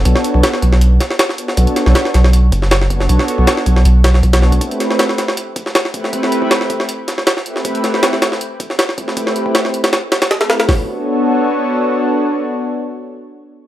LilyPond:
<<
  \new Staff \with { instrumentName = "Analog synth pad" } { \time 4/4 \key b \minor \tempo 4 = 158 <b d' fis' a' cis''>8. <b d' fis' a' cis''>16 r2 r8 <b d' fis' a' cis''>8 | <b d' fis' a' cis''>8. <b d' fis' a' cis''>16 r2 r8 <b d' fis' a' cis''>8 | <b d' fis' a' cis''>8. <b d' fis' a' cis''>16 r2 r16 <b d' fis' a' cis''>8. | <a c' e' g' b'>8. <a c' e' g' b'>16 r2 r8 <a c' e' g' b'>8 |
<a c' e' g' b'>8. <a c' e' g' b'>16 r2 r8 <a c' e' g' b'>8 | <a c' e' g' b'>8. <a c' e' g' b'>16 r2 r8 <a c' e' g' b'>8 | <a c' e' g' b'>8. <a c' e' g' b'>16 r2 r16 <a c' e' g' b'>8. | <b d' fis' a' cis''>1~ |
<b d' fis' a' cis''>1 | }
  \new Staff \with { instrumentName = "Sub bass" } { \clef bass \time 4/4 \key b \minor b,,16 r8 b,,16 r8 b,,4 r4. | b,,16 r8 b,,16 r8 b,,4 fis,,4. | b,,16 r8 b,,16 r8 b,,8 b,,4 b,,4 | r1 |
r1 | r1 | r1 | r1 |
r1 | }
  \new DrumStaff \with { instrumentName = "Drums" } \drummode { \time 4/4 <hh bd>16 sn16 hh16 bd16 <hh sn>16 sn16 <hh bd>16 sn16 hh8 <hh sn>16 sn16 <hh sn>16 sn16 hh16 sn16 | <hh bd>16 hh16 <hh sn>16 sn16 <hh sn>16 sn16 <hh sn>16 sn16 hh8 <hh bd>16 sn16 <hh sn>16 sn16 <hh bd>16 sn16 | <hh bd>16 sn16 hh16 bd16 <hh sn>16 sn16 <hh bd>16 sn16 hh8 <hh sn>16 sn16 <hh bd>16 <hh sn>16 sn16 <hh bd>16 | <hh bd>16 hh16 <hh sn>16 sn16 <hh sn>16 sn16 <hh sn>16 sn16 hh8 <hh bd>16 sn16 <hh sn>16 sn16 <hh bd>16 sn16 |
<hh bd>16 sn16 hh16 bd16 <hh sn>16 sn16 <hh bd>16 sn16 hh8 <hh sn>16 sn16 <hh sn>16 sn16 hh16 sn16 | <hh bd>16 hh16 <hh sn>16 sn16 <hh sn>16 sn16 <hh sn>16 sn16 hh8 <hh bd>16 sn16 <hh sn>16 sn16 <hh bd>16 sn16 | <hh bd>16 sn16 hh16 bd16 <hh sn>16 sn16 hh16 <hh sn>16 <hh sn>8 <hh sn>16 <hh sn>16 <hh sn>16 <hh sn>16 <hh sn>16 <hh sn>16 | <hho bd sn>4 r4 r4 r4 |
r4 r4 r4 r4 | }
>>